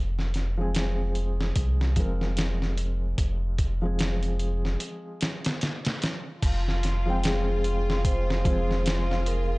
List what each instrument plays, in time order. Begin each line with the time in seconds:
Already playing: sub bass F1, felt piano F3 G#3 C4 G#4
0.19 snare
0.34 snare, closed hi-hat
0.57 felt piano F3 G#3 C4 G#4
0.75 snare, closed hi-hat
1.15 closed hi-hat
1.41 snare
1.56 sub bass C2, kick, closed hi-hat
1.81 snare
1.96 sub bass F1, felt piano F3 G#3 C4 A#4, kick, closed hi-hat
2.21 snare
2.37 snare, closed hi-hat
2.62 snare
2.77 closed hi-hat
3.18 sub bass F1, kick, closed hi-hat
3.58 kick, closed hi-hat
3.82 felt piano F3 G#3 C4 G#4
3.99 snare, closed hi-hat
4.23 closed hi-hat
4.39 closed hi-hat
4.65 snare
4.80 closed hi-hat
5.21 snare, closed hi-hat
5.45 snare, closed hi-hat
5.61 snare, closed hi-hat
5.85 snare, closed hi-hat
6.02 snare, closed hi-hat
6.42 sub bass F1, violin section F4, synth texture G#4, kick, closed hi-hat, crash
6.68 snare
6.83 snare, closed hi-hat
7.06 felt piano F3 G#3 C4
7.10 felt piano G5
7.24 vibraphone G#4, snare, closed hi-hat
7.64 closed hi-hat
7.90 snare
8.05 vibraphone C5, kick, closed hi-hat
8.30 snare
8.44 felt piano F3 G#3 C4 G#4, kick, closed hi-hat
8.71 snare
8.86 snare, closed hi-hat
9.11 snare
9.26 vibraphone A#4, closed hi-hat